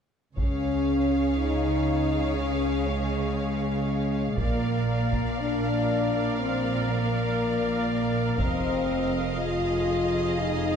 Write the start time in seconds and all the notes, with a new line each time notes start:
0.36 C#2 C#3 C#4 G#4 C#5 F5, taiko
1.37 D#4
2.38 C#4
2.87 G#3
4.37 A#1 A#2 A#3 A#4 D5 F5, taiko
5.13 taiko
5.39 D4
6.39 C4
6.90 A#3
8.38 F1 F2 C4 D#5 F5, taiko
9.38 F4 G#4
10.39 D#4